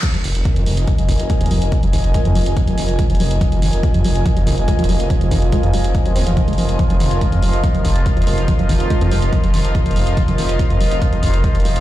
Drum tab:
CC |x-------------------------------|--------------------------------|--------------------------------|--------------------------------|
HH |x-x-o-x-x-x-o-x-x-x-o-x-x-xxo-x-|x-x-o-x-x-x-o-x-x-x-o-x-x-xxo-x-|x-x-o-x-x-x-o-x-x-x-o-x-x-xxo-x-|x-x-o-x-x-x-o-x-x-x-o-x-x-xxo-x-|
BD |o-------o-------o---o---o-------|o---o---o-------o-------o-------|o-------o-------o---o---o-------|o---o---o-------o-------o-------|

CC |--------------------------------|--------------------------------|--------------------------------|
HH |x-x-o-x-x-x-o-x-x-x-o-x-x-xxo-x-|x-x-o-x-x-x-o-x-x-x-o-x-x-xxo-x-|x-x-o-x-x-x-o-x-x-x-o-x-x-xxo-x-|
BD |o-------o-------o---o---o-------|o---o---o-------o-------o-------|o-------o-------o---o---o-------|